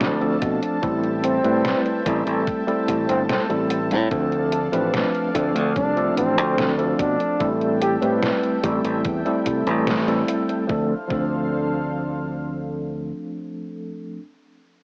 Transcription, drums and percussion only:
0.01 snare, closed hi-hat
0.21 closed hi-hat
0.42 kick, closed hi-hat
0.63 closed hi-hat
0.83 kick, closed hi-hat
1.04 closed hi-hat
1.24 closed hi-hat
1.44 closed hi-hat
1.65 snare, closed hi-hat
1.86 closed hi-hat
2.06 kick, closed hi-hat
2.27 closed hi-hat
2.47 kick, closed hi-hat
2.68 closed hi-hat
2.88 kick, closed hi-hat
3.09 closed hi-hat
3.29 snare, closed hi-hat
3.50 closed hi-hat
3.70 closed hi-hat
3.91 closed hi-hat
4.12 kick, closed hi-hat
4.32 closed hi-hat
4.53 closed hi-hat
4.73 closed hi-hat
4.94 snare, closed hi-hat
5.15 closed hi-hat
5.35 kick, closed hi-hat
5.56 closed hi-hat
5.76 kick, closed hi-hat
5.97 closed hi-hat
6.17 closed hi-hat
6.38 closed hi-hat
6.58 snare, closed hi-hat
6.79 closed hi-hat
6.99 kick, closed hi-hat
7.20 closed hi-hat
7.40 kick, closed hi-hat
7.61 closed hi-hat
7.82 closed hi-hat
8.02 closed hi-hat
8.23 snare, closed hi-hat
8.43 closed hi-hat
8.64 kick, closed hi-hat
8.85 closed hi-hat
9.04 kick, closed hi-hat
9.26 closed hi-hat
9.46 kick, closed hi-hat
9.67 closed hi-hat
9.87 snare, closed hi-hat
10.08 closed hi-hat
10.28 closed hi-hat
10.49 closed hi-hat
10.69 kick
11.10 kick

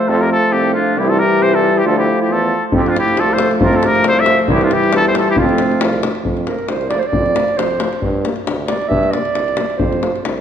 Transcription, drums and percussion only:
2.72 davul low
2.86 davul high
2.96 davul high
3.08 davul high
3.17 davul high
3.29 davul high
3.38 davul high
3.51 davul high
3.61 davul low
3.73 davul high
3.83 davul high
3.95 davul high
4.04 davul high
4.17 davul high
4.26 davul high
4.39 davul high
4.48 davul low
4.61 davul high
4.71 davul high
4.84 davul high
4.93 davul high
5.05 davul high
5.15 davul high
5.28 davul high
5.36 davul low
5.49 davul high
5.58 davul high
5.71 davul high
5.81 davul high
5.93 davul high
6.03 davul high
6.15 davul high
6.25 davul low
6.37 davul high
6.47 davul high
6.59 davul high
6.68 davul high
6.81 davul high
6.91 davul high
7.03 davul high
7.13 davul low
7.26 davul high
7.36 davul high
7.48 davul high
7.59 davul high
7.71 davul high
7.80 davul high
7.93 davul high
8.02 davul low
8.25 davul high
8.36 davul high
8.47 davul high
8.68 davul high
8.81 davul high
8.91 davul low
9.03 davul high
9.13 davul high
9.25 davul high
9.35 davul high
9.48 davul high
9.57 davul high
9.70 davul high
9.80 davul low
9.93 davul high
10.03 davul high
10.16 davul high
10.25 davul high
10.38 davul high

